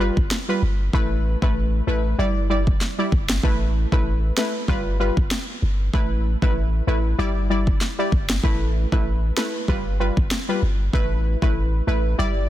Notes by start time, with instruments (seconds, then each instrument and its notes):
Already playing: sub bass G1
0.00 synth stab G3 F4 B4
0.17 sub bass G1, kick
0.31 snare
0.48 synth stab G3 F4 B4
0.62 sub bass G1
0.93 sub bass A1, synth stab A3 E4 B4, kick
1.42 sub bass A1, synth stab A3 E4 B4, kick
1.87 sub bass A1, synth stab A3 E4 B4
2.18 sub bass G1, synth stab G3 E4 D5
2.50 synth stab G3 E4 D5
2.67 kick
2.81 snare
2.98 synth stab G3 E4 D5
3.12 sub bass G1, kick
3.29 snare
3.43 sub bass A1, synth stab A3 E4 B4, kick
3.92 sub bass A1, synth stab A3 E4 B4, kick
4.37 synth stab A3 E4 B4, snare
4.68 sub bass G1, synth stab G3 F4 B4, kick
4.99 synth stab G3 F4 B4
5.17 sub bass G1, kick
5.31 snare
5.62 sub bass G1
5.93 sub bass A1, synth stab A3 E4 B4, kick
6.42 sub bass A1, synth stab A3 E4 B4, kick
6.87 sub bass A1, synth stab A3 E4 B4
7.18 sub bass G1, synth stab G3 E4 D5
7.50 synth stab G3 E4 D5
7.67 kick
7.81 snare
7.98 synth stab G3 E4 D5
8.12 sub bass G1, kick
8.30 snare
8.43 sub bass A1, synth stab A3 E4 B4, kick
8.92 sub bass A1, synth stab A3 E4 B4, kick
9.37 synth stab A3 E4 B4, snare
9.68 sub bass G1, synth stab G3 F4 B4, kick
10.00 synth stab G3 F4 B4
10.17 sub bass G1, kick
10.31 snare
10.48 synth stab G3 F4 B4
10.62 sub bass G1
10.93 sub bass A1, synth stab A3 E4 B4, kick
11.42 sub bass A1, synth stab A3 E4 B4, kick
11.87 sub bass A1, synth stab A3 E4 B4
12.18 sub bass G1, synth stab G3 E4 D5